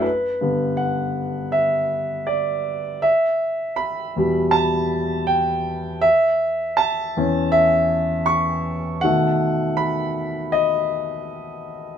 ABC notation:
X:1
M:4/4
L:1/16
Q:1/4=80
K:Glyd
V:1 name="Grand piano"
B4 f4 e4 d3 z | e4 b4 a4 g3 z | e4 a4 e4 c'4 | f4 b4 ^d4 z4 |]
V:2 name="Grand piano" clef=bass
z2 [G,,D,B,]6 z8 | z6 [E,,B,,G,]2 z8 | z6 [E,,E,C]2 z8 | [B,,^D,A,]16 |]